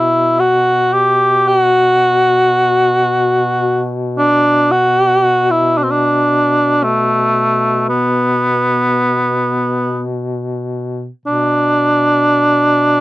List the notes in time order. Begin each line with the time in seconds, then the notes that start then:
Already playing: B2 E4
0.39 F#4
0.93 G4
1.48 F#4
4.18 D4
4.71 F#4
5.50 E4
5.78 D4
5.83 C4
5.91 D4
6.83 A3
7.89 B3
11.26 B2 D4